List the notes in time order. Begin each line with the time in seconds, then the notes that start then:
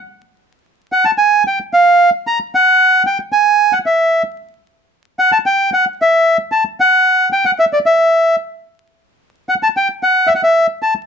0.92 F#5
1.05 A5
1.18 G#5
1.47 G5
1.73 F5
2.27 A#5
2.55 F#5
3.06 G5
3.32 G#5
3.73 F#5
3.86 E5
5.19 F#5
5.32 A5
5.46 G5
5.73 F#5
6.02 E5
6.52 A5
6.80 F#5
7.33 G5
7.45 F#5
7.59 E5
7.73 D5
7.86 E5
9.49 F#5
9.63 A5
9.77 G5
10.03 F#5
10.27 E5
10.35 F#5
10.44 E5
10.82 A5